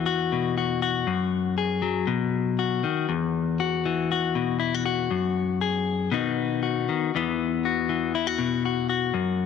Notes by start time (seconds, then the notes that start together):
Already playing: E2 E3
0.06 F#4
0.32 B2
0.58 F#4
0.82 F#4
1.07 F#2
1.58 G#4
1.82 F#3
2.07 B2
2.59 F#4
2.83 D#3
3.09 E2
3.60 F#4
3.86 E3
4.12 F#4
4.35 B2
4.60 E4
4.74 F#4
4.86 F#4
5.11 F#2
5.61 G#4
6.11 B2 D#3 B3 D#4 F#4
6.63 F#4
6.89 D#3
7.15 E2 E3 B3, muted clean electric guitar stroke
7.65 F#4
7.89 E3
8.15 E4
8.27 F#4
8.39 B2
8.65 F#4
8.89 F#4
9.14 F#2